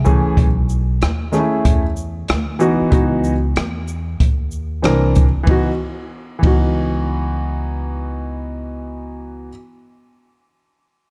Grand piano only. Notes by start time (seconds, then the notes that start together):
0.04 E3 A3 C#4 G#4
1.32 D#3 A3 C#4 G#4
1.38 E4
2.59 E3 B3 D#4 F#4
2.90 E3 B3 D#4 F#4
4.82 E3 C4 D4 A#4
5.43 E3 B3
5.48 D#4 F#4
6.39 E3 B3
6.44 D#4 F#4